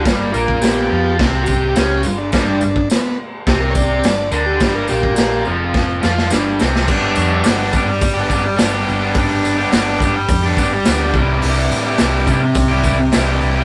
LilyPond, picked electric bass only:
\new Staff \with { instrumentName = "Picked electric bass" } { \clef bass \time 4/4 \key g \mixolydian \tempo 4 = 105 g,,8 bes,,4 f,8 c,4 cis,8 g,,8 | g,,8 g,,8 r4 c,4 r8 d,8 | g,,8 bes,,4 f,,4 f,8 g,,8 c,8 | g,,8 f,8 g,,8 g,8 g,,8 g,,8 g,,8 g,,8 |
g,,4 g,,8 g,,8 f,8 g,,8 d,8 c,8 | c,8 a,8 c,8 c8 c,8 c,8 c,8 c,8 | }